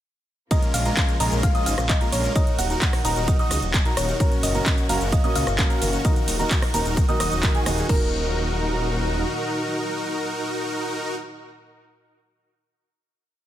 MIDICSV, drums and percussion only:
0, 0, Header, 1, 2, 480
1, 0, Start_track
1, 0, Key_signature, -6, "minor"
1, 0, Tempo, 461538
1, 529, Time_signature, 4, 2, 24, 8
1, 14005, End_track
2, 0, Start_track
2, 0, Title_t, "Drums"
2, 529, Note_on_c, 9, 36, 121
2, 529, Note_on_c, 9, 42, 93
2, 529, Note_on_c, 9, 51, 52
2, 536, Note_on_c, 9, 82, 43
2, 633, Note_off_c, 9, 36, 0
2, 633, Note_off_c, 9, 42, 0
2, 633, Note_off_c, 9, 51, 0
2, 640, Note_off_c, 9, 82, 0
2, 649, Note_on_c, 9, 42, 41
2, 656, Note_on_c, 9, 82, 22
2, 753, Note_off_c, 9, 42, 0
2, 760, Note_off_c, 9, 82, 0
2, 769, Note_on_c, 9, 46, 110
2, 769, Note_on_c, 9, 51, 76
2, 776, Note_on_c, 9, 82, 80
2, 873, Note_off_c, 9, 46, 0
2, 873, Note_off_c, 9, 51, 0
2, 880, Note_off_c, 9, 82, 0
2, 889, Note_on_c, 9, 42, 42
2, 896, Note_on_c, 9, 82, 34
2, 993, Note_off_c, 9, 42, 0
2, 1000, Note_off_c, 9, 82, 0
2, 1009, Note_on_c, 9, 36, 116
2, 1009, Note_on_c, 9, 42, 97
2, 1009, Note_on_c, 9, 51, 53
2, 1010, Note_on_c, 9, 39, 122
2, 1016, Note_on_c, 9, 82, 45
2, 1113, Note_off_c, 9, 36, 0
2, 1113, Note_off_c, 9, 42, 0
2, 1113, Note_off_c, 9, 51, 0
2, 1114, Note_off_c, 9, 39, 0
2, 1120, Note_off_c, 9, 82, 0
2, 1129, Note_on_c, 9, 42, 42
2, 1137, Note_on_c, 9, 82, 23
2, 1233, Note_off_c, 9, 42, 0
2, 1241, Note_off_c, 9, 82, 0
2, 1249, Note_on_c, 9, 46, 106
2, 1249, Note_on_c, 9, 51, 76
2, 1256, Note_on_c, 9, 82, 82
2, 1353, Note_off_c, 9, 46, 0
2, 1353, Note_off_c, 9, 51, 0
2, 1360, Note_off_c, 9, 82, 0
2, 1369, Note_on_c, 9, 42, 42
2, 1376, Note_on_c, 9, 82, 34
2, 1473, Note_off_c, 9, 42, 0
2, 1480, Note_off_c, 9, 82, 0
2, 1489, Note_on_c, 9, 36, 122
2, 1489, Note_on_c, 9, 42, 95
2, 1489, Note_on_c, 9, 51, 54
2, 1497, Note_on_c, 9, 82, 44
2, 1593, Note_off_c, 9, 36, 0
2, 1593, Note_off_c, 9, 42, 0
2, 1593, Note_off_c, 9, 51, 0
2, 1601, Note_off_c, 9, 82, 0
2, 1610, Note_on_c, 9, 42, 42
2, 1617, Note_on_c, 9, 82, 23
2, 1714, Note_off_c, 9, 42, 0
2, 1721, Note_off_c, 9, 82, 0
2, 1729, Note_on_c, 9, 46, 103
2, 1729, Note_on_c, 9, 51, 76
2, 1736, Note_on_c, 9, 82, 78
2, 1833, Note_off_c, 9, 46, 0
2, 1833, Note_off_c, 9, 51, 0
2, 1840, Note_off_c, 9, 82, 0
2, 1849, Note_on_c, 9, 37, 82
2, 1849, Note_on_c, 9, 42, 42
2, 1857, Note_on_c, 9, 82, 35
2, 1953, Note_off_c, 9, 37, 0
2, 1953, Note_off_c, 9, 42, 0
2, 1961, Note_off_c, 9, 82, 0
2, 1969, Note_on_c, 9, 36, 116
2, 1969, Note_on_c, 9, 42, 95
2, 1969, Note_on_c, 9, 51, 52
2, 1970, Note_on_c, 9, 39, 123
2, 1977, Note_on_c, 9, 82, 45
2, 2073, Note_off_c, 9, 36, 0
2, 2073, Note_off_c, 9, 42, 0
2, 2073, Note_off_c, 9, 51, 0
2, 2074, Note_off_c, 9, 39, 0
2, 2081, Note_off_c, 9, 82, 0
2, 2089, Note_on_c, 9, 42, 42
2, 2097, Note_on_c, 9, 82, 23
2, 2193, Note_off_c, 9, 42, 0
2, 2201, Note_off_c, 9, 82, 0
2, 2210, Note_on_c, 9, 46, 107
2, 2210, Note_on_c, 9, 51, 76
2, 2217, Note_on_c, 9, 82, 80
2, 2314, Note_off_c, 9, 46, 0
2, 2314, Note_off_c, 9, 51, 0
2, 2321, Note_off_c, 9, 82, 0
2, 2329, Note_on_c, 9, 42, 41
2, 2337, Note_on_c, 9, 82, 34
2, 2433, Note_off_c, 9, 42, 0
2, 2441, Note_off_c, 9, 82, 0
2, 2449, Note_on_c, 9, 36, 126
2, 2449, Note_on_c, 9, 42, 90
2, 2449, Note_on_c, 9, 51, 53
2, 2456, Note_on_c, 9, 82, 42
2, 2553, Note_off_c, 9, 36, 0
2, 2553, Note_off_c, 9, 42, 0
2, 2553, Note_off_c, 9, 51, 0
2, 2560, Note_off_c, 9, 82, 0
2, 2569, Note_on_c, 9, 42, 42
2, 2576, Note_on_c, 9, 82, 22
2, 2673, Note_off_c, 9, 42, 0
2, 2680, Note_off_c, 9, 82, 0
2, 2689, Note_on_c, 9, 46, 109
2, 2689, Note_on_c, 9, 51, 75
2, 2696, Note_on_c, 9, 82, 78
2, 2793, Note_off_c, 9, 46, 0
2, 2793, Note_off_c, 9, 51, 0
2, 2800, Note_off_c, 9, 82, 0
2, 2809, Note_on_c, 9, 42, 41
2, 2816, Note_on_c, 9, 82, 32
2, 2913, Note_off_c, 9, 42, 0
2, 2920, Note_off_c, 9, 82, 0
2, 2929, Note_on_c, 9, 36, 123
2, 2929, Note_on_c, 9, 42, 94
2, 2929, Note_on_c, 9, 51, 55
2, 2930, Note_on_c, 9, 39, 127
2, 2936, Note_on_c, 9, 82, 44
2, 3033, Note_off_c, 9, 36, 0
2, 3033, Note_off_c, 9, 42, 0
2, 3033, Note_off_c, 9, 51, 0
2, 3034, Note_off_c, 9, 39, 0
2, 3040, Note_off_c, 9, 82, 0
2, 3049, Note_on_c, 9, 37, 86
2, 3049, Note_on_c, 9, 46, 64
2, 3056, Note_on_c, 9, 82, 22
2, 3153, Note_off_c, 9, 37, 0
2, 3153, Note_off_c, 9, 46, 0
2, 3160, Note_off_c, 9, 82, 0
2, 3169, Note_on_c, 9, 46, 111
2, 3169, Note_on_c, 9, 51, 76
2, 3176, Note_on_c, 9, 82, 78
2, 3273, Note_off_c, 9, 46, 0
2, 3273, Note_off_c, 9, 51, 0
2, 3280, Note_off_c, 9, 82, 0
2, 3289, Note_on_c, 9, 42, 40
2, 3296, Note_on_c, 9, 82, 33
2, 3393, Note_off_c, 9, 42, 0
2, 3400, Note_off_c, 9, 82, 0
2, 3409, Note_on_c, 9, 36, 123
2, 3409, Note_on_c, 9, 42, 92
2, 3409, Note_on_c, 9, 51, 52
2, 3416, Note_on_c, 9, 82, 44
2, 3513, Note_off_c, 9, 36, 0
2, 3513, Note_off_c, 9, 42, 0
2, 3513, Note_off_c, 9, 51, 0
2, 3520, Note_off_c, 9, 82, 0
2, 3528, Note_on_c, 9, 42, 39
2, 3535, Note_on_c, 9, 82, 22
2, 3632, Note_off_c, 9, 42, 0
2, 3639, Note_off_c, 9, 82, 0
2, 3648, Note_on_c, 9, 37, 63
2, 3648, Note_on_c, 9, 46, 109
2, 3648, Note_on_c, 9, 51, 77
2, 3656, Note_on_c, 9, 82, 75
2, 3752, Note_off_c, 9, 37, 0
2, 3752, Note_off_c, 9, 46, 0
2, 3752, Note_off_c, 9, 51, 0
2, 3760, Note_off_c, 9, 82, 0
2, 3769, Note_on_c, 9, 42, 42
2, 3776, Note_on_c, 9, 82, 33
2, 3873, Note_off_c, 9, 42, 0
2, 3880, Note_off_c, 9, 82, 0
2, 3889, Note_on_c, 9, 36, 125
2, 3889, Note_on_c, 9, 39, 122
2, 3889, Note_on_c, 9, 42, 92
2, 3889, Note_on_c, 9, 51, 53
2, 3896, Note_on_c, 9, 82, 44
2, 3993, Note_off_c, 9, 36, 0
2, 3993, Note_off_c, 9, 39, 0
2, 3993, Note_off_c, 9, 42, 0
2, 3993, Note_off_c, 9, 51, 0
2, 4000, Note_off_c, 9, 82, 0
2, 4009, Note_on_c, 9, 42, 41
2, 4016, Note_on_c, 9, 82, 22
2, 4113, Note_off_c, 9, 42, 0
2, 4120, Note_off_c, 9, 82, 0
2, 4129, Note_on_c, 9, 37, 80
2, 4129, Note_on_c, 9, 46, 115
2, 4129, Note_on_c, 9, 51, 78
2, 4136, Note_on_c, 9, 82, 78
2, 4233, Note_off_c, 9, 37, 0
2, 4233, Note_off_c, 9, 46, 0
2, 4233, Note_off_c, 9, 51, 0
2, 4240, Note_off_c, 9, 82, 0
2, 4249, Note_on_c, 9, 42, 39
2, 4256, Note_on_c, 9, 82, 32
2, 4353, Note_off_c, 9, 42, 0
2, 4360, Note_off_c, 9, 82, 0
2, 4369, Note_on_c, 9, 36, 122
2, 4369, Note_on_c, 9, 42, 90
2, 4369, Note_on_c, 9, 51, 54
2, 4376, Note_on_c, 9, 82, 41
2, 4473, Note_off_c, 9, 36, 0
2, 4473, Note_off_c, 9, 42, 0
2, 4473, Note_off_c, 9, 51, 0
2, 4480, Note_off_c, 9, 82, 0
2, 4489, Note_on_c, 9, 42, 38
2, 4496, Note_on_c, 9, 82, 22
2, 4593, Note_off_c, 9, 42, 0
2, 4600, Note_off_c, 9, 82, 0
2, 4609, Note_on_c, 9, 46, 115
2, 4609, Note_on_c, 9, 51, 78
2, 4616, Note_on_c, 9, 82, 80
2, 4713, Note_off_c, 9, 46, 0
2, 4713, Note_off_c, 9, 51, 0
2, 4720, Note_off_c, 9, 82, 0
2, 4729, Note_on_c, 9, 42, 39
2, 4736, Note_on_c, 9, 82, 32
2, 4833, Note_off_c, 9, 42, 0
2, 4840, Note_off_c, 9, 82, 0
2, 4849, Note_on_c, 9, 36, 127
2, 4849, Note_on_c, 9, 39, 127
2, 4849, Note_on_c, 9, 42, 91
2, 4849, Note_on_c, 9, 51, 55
2, 4856, Note_on_c, 9, 82, 44
2, 4953, Note_off_c, 9, 36, 0
2, 4953, Note_off_c, 9, 39, 0
2, 4953, Note_off_c, 9, 42, 0
2, 4953, Note_off_c, 9, 51, 0
2, 4960, Note_off_c, 9, 82, 0
2, 4969, Note_on_c, 9, 42, 41
2, 4976, Note_on_c, 9, 82, 22
2, 5073, Note_off_c, 9, 42, 0
2, 5080, Note_off_c, 9, 82, 0
2, 5089, Note_on_c, 9, 46, 117
2, 5089, Note_on_c, 9, 51, 79
2, 5096, Note_on_c, 9, 82, 75
2, 5193, Note_off_c, 9, 46, 0
2, 5193, Note_off_c, 9, 51, 0
2, 5200, Note_off_c, 9, 82, 0
2, 5209, Note_on_c, 9, 42, 39
2, 5217, Note_on_c, 9, 82, 33
2, 5313, Note_off_c, 9, 42, 0
2, 5321, Note_off_c, 9, 82, 0
2, 5329, Note_on_c, 9, 36, 127
2, 5329, Note_on_c, 9, 42, 89
2, 5329, Note_on_c, 9, 51, 56
2, 5336, Note_on_c, 9, 82, 44
2, 5433, Note_off_c, 9, 36, 0
2, 5433, Note_off_c, 9, 42, 0
2, 5433, Note_off_c, 9, 51, 0
2, 5440, Note_off_c, 9, 82, 0
2, 5449, Note_on_c, 9, 42, 39
2, 5456, Note_on_c, 9, 82, 22
2, 5553, Note_off_c, 9, 42, 0
2, 5560, Note_off_c, 9, 82, 0
2, 5569, Note_on_c, 9, 46, 111
2, 5569, Note_on_c, 9, 51, 78
2, 5576, Note_on_c, 9, 82, 77
2, 5673, Note_off_c, 9, 46, 0
2, 5673, Note_off_c, 9, 51, 0
2, 5680, Note_off_c, 9, 82, 0
2, 5689, Note_on_c, 9, 37, 87
2, 5689, Note_on_c, 9, 42, 38
2, 5696, Note_on_c, 9, 82, 34
2, 5793, Note_off_c, 9, 37, 0
2, 5793, Note_off_c, 9, 42, 0
2, 5800, Note_off_c, 9, 82, 0
2, 5809, Note_on_c, 9, 36, 123
2, 5809, Note_on_c, 9, 42, 88
2, 5809, Note_on_c, 9, 51, 55
2, 5810, Note_on_c, 9, 39, 122
2, 5816, Note_on_c, 9, 82, 42
2, 5913, Note_off_c, 9, 36, 0
2, 5913, Note_off_c, 9, 42, 0
2, 5913, Note_off_c, 9, 51, 0
2, 5914, Note_off_c, 9, 39, 0
2, 5920, Note_off_c, 9, 82, 0
2, 5929, Note_on_c, 9, 42, 39
2, 5936, Note_on_c, 9, 82, 21
2, 6033, Note_off_c, 9, 42, 0
2, 6040, Note_off_c, 9, 82, 0
2, 6049, Note_on_c, 9, 46, 112
2, 6049, Note_on_c, 9, 51, 79
2, 6056, Note_on_c, 9, 82, 78
2, 6153, Note_off_c, 9, 46, 0
2, 6153, Note_off_c, 9, 51, 0
2, 6160, Note_off_c, 9, 82, 0
2, 6169, Note_on_c, 9, 42, 39
2, 6176, Note_on_c, 9, 82, 33
2, 6273, Note_off_c, 9, 42, 0
2, 6280, Note_off_c, 9, 82, 0
2, 6289, Note_on_c, 9, 36, 125
2, 6289, Note_on_c, 9, 42, 88
2, 6289, Note_on_c, 9, 51, 58
2, 6296, Note_on_c, 9, 82, 43
2, 6393, Note_off_c, 9, 36, 0
2, 6393, Note_off_c, 9, 42, 0
2, 6393, Note_off_c, 9, 51, 0
2, 6400, Note_off_c, 9, 82, 0
2, 6409, Note_on_c, 9, 42, 38
2, 6416, Note_on_c, 9, 82, 22
2, 6513, Note_off_c, 9, 42, 0
2, 6520, Note_off_c, 9, 82, 0
2, 6529, Note_on_c, 9, 46, 112
2, 6529, Note_on_c, 9, 51, 85
2, 6536, Note_on_c, 9, 82, 80
2, 6633, Note_off_c, 9, 46, 0
2, 6633, Note_off_c, 9, 51, 0
2, 6640, Note_off_c, 9, 82, 0
2, 6649, Note_on_c, 9, 42, 37
2, 6656, Note_on_c, 9, 82, 34
2, 6753, Note_off_c, 9, 42, 0
2, 6760, Note_off_c, 9, 82, 0
2, 6769, Note_on_c, 9, 36, 122
2, 6769, Note_on_c, 9, 39, 125
2, 6769, Note_on_c, 9, 42, 93
2, 6769, Note_on_c, 9, 51, 62
2, 6776, Note_on_c, 9, 82, 44
2, 6873, Note_off_c, 9, 36, 0
2, 6873, Note_off_c, 9, 39, 0
2, 6873, Note_off_c, 9, 42, 0
2, 6873, Note_off_c, 9, 51, 0
2, 6880, Note_off_c, 9, 82, 0
2, 6889, Note_on_c, 9, 37, 93
2, 6889, Note_on_c, 9, 46, 68
2, 6896, Note_on_c, 9, 82, 22
2, 6993, Note_off_c, 9, 37, 0
2, 6993, Note_off_c, 9, 46, 0
2, 7000, Note_off_c, 9, 82, 0
2, 7009, Note_on_c, 9, 46, 109
2, 7009, Note_on_c, 9, 51, 82
2, 7016, Note_on_c, 9, 82, 77
2, 7113, Note_off_c, 9, 46, 0
2, 7113, Note_off_c, 9, 51, 0
2, 7120, Note_off_c, 9, 82, 0
2, 7129, Note_on_c, 9, 42, 40
2, 7136, Note_on_c, 9, 82, 34
2, 7233, Note_off_c, 9, 42, 0
2, 7240, Note_off_c, 9, 82, 0
2, 7249, Note_on_c, 9, 36, 127
2, 7249, Note_on_c, 9, 42, 90
2, 7249, Note_on_c, 9, 51, 57
2, 7256, Note_on_c, 9, 82, 44
2, 7353, Note_off_c, 9, 36, 0
2, 7353, Note_off_c, 9, 42, 0
2, 7353, Note_off_c, 9, 51, 0
2, 7360, Note_off_c, 9, 82, 0
2, 7369, Note_on_c, 9, 42, 38
2, 7376, Note_on_c, 9, 82, 23
2, 7473, Note_off_c, 9, 42, 0
2, 7480, Note_off_c, 9, 82, 0
2, 7489, Note_on_c, 9, 37, 65
2, 7489, Note_on_c, 9, 46, 116
2, 7489, Note_on_c, 9, 51, 83
2, 7496, Note_on_c, 9, 82, 78
2, 7593, Note_off_c, 9, 37, 0
2, 7593, Note_off_c, 9, 46, 0
2, 7593, Note_off_c, 9, 51, 0
2, 7600, Note_off_c, 9, 82, 0
2, 7609, Note_on_c, 9, 42, 39
2, 7616, Note_on_c, 9, 82, 35
2, 7713, Note_off_c, 9, 42, 0
2, 7720, Note_off_c, 9, 82, 0
2, 7729, Note_on_c, 9, 36, 127
2, 7729, Note_on_c, 9, 39, 120
2, 7729, Note_on_c, 9, 42, 90
2, 7729, Note_on_c, 9, 51, 56
2, 7736, Note_on_c, 9, 82, 45
2, 7833, Note_off_c, 9, 36, 0
2, 7833, Note_off_c, 9, 39, 0
2, 7833, Note_off_c, 9, 42, 0
2, 7833, Note_off_c, 9, 51, 0
2, 7840, Note_off_c, 9, 82, 0
2, 7849, Note_on_c, 9, 42, 38
2, 7856, Note_on_c, 9, 82, 22
2, 7953, Note_off_c, 9, 42, 0
2, 7960, Note_off_c, 9, 82, 0
2, 7969, Note_on_c, 9, 37, 87
2, 7969, Note_on_c, 9, 46, 113
2, 7969, Note_on_c, 9, 51, 81
2, 7976, Note_on_c, 9, 82, 80
2, 8073, Note_off_c, 9, 37, 0
2, 8073, Note_off_c, 9, 46, 0
2, 8073, Note_off_c, 9, 51, 0
2, 8080, Note_off_c, 9, 82, 0
2, 8089, Note_on_c, 9, 42, 38
2, 8096, Note_on_c, 9, 82, 33
2, 8193, Note_off_c, 9, 42, 0
2, 8200, Note_off_c, 9, 82, 0
2, 8209, Note_on_c, 9, 36, 120
2, 8209, Note_on_c, 9, 49, 86
2, 8313, Note_off_c, 9, 36, 0
2, 8313, Note_off_c, 9, 49, 0
2, 14005, End_track
0, 0, End_of_file